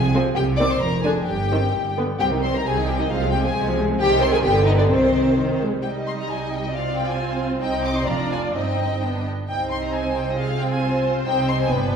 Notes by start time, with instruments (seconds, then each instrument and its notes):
Already playing: double bass section C2, cello section C3, violin section G#4 G#5
0.14 viola section F3 C4
0.35 double bass section C2, cello section C3, violin section G4 G5
0.57 viola section D#3 C4, violin section D5 D6
0.68 violin section C5 C6
0.79 double bass section F1, cello section F2, violin section A#4 A#5
1.02 viola section D3 D4, violin section G#4 G#5
1.25 double bass section G1, cello section G2, violin section G4 G5
1.51 viola section D#3 C4
1.73 double bass section G1, cello section G2
1.97 viola section D3 B3
2.20 double bass section C2, cello section C3, viola section G3 C4, violin section G4 G5
2.31 viola section D#3 D#4
2.42 viola section G3 C4, violin section C5 C6
2.54 viola section D#3 D#4, violin section A#4 A#5
2.65 double bass section C2, cello section C3, viola section G3 C4, violin section G#4 G#5
2.77 viola section D#3 D#4
2.87 viola section G3 C4, violin section G4 G5
2.99 viola section D#3 D#4, violin section D#4 D#5
3.09 double bass section C2, cello section C3, viola section G#3 C4, violin section F4 F5
3.21 viola section F3 G#3
3.30 viola section G#3 C4, violin section G4 G5
3.43 viola section F3 G#3, violin section G#4 G#5
3.55 double bass section C2, cello section C3, viola section G#3 C4
3.67 viola section F3 G#3
3.77 viola section G#3 C4
3.89 viola section F3 G#3
3.99 double bass section C2, cello section C3, viola section D#3 C4, violin section G4 G5
4.20 violin section C5 C6
4.32 violin section G#4 G#5
4.42 double bass section G1, cello section G2, viola section D3 B3, violin section G4 G5
4.64 violin section D#4 D#5
4.77 violin section D4 D5
4.88 double bass section C2, cello section C3, viola section D#3 C4, violin section C4 C5
5.36 viola section D#3
5.61 viola section G#3
5.72 viola section G3
5.82 double bass section C2, cello section C3, viola section G3 D#4, violin section D#5 G5
6.06 violin section C6
6.19 violin section A#5
6.29 violin section G#5
6.52 violin section G5
6.64 violin section D#5
6.72 viola section C4 F4, violin section D5 F5
6.97 violin section G5
7.07 violin section G#5
7.17 violin section C5
7.60 double bass section C2, cello section C3, viola section C4 D#4, violin section D#5 G5
7.84 violin section D6
7.95 violin section C6
8.06 double bass section F1, cello section F2, viola section D4 F4, violin section D5 A#5
8.31 violin section G#5
8.53 double bass section G1, cello section G2, viola section C4 D#4, violin section D#5 G5
9.02 viola section B3 D4
9.48 double bass section C2, cello section C3, viola section C4 D#4, violin section G5
9.71 violin section C6
9.85 violin section A#5
9.94 violin section C5 G#5
10.17 violin section G5
10.29 violin section D#5
10.38 viola section C4 F4, violin section G#4 F5
10.60 violin section G5
10.71 violin section G#5
10.82 violin section C5
11.26 double bass section C2, cello section C3, viola section C4 D#4, violin section G5
11.48 violin section C6
11.61 violin section G#5
11.71 double bass section G1, cello section G2, viola section B3 D4, violin section B4 G5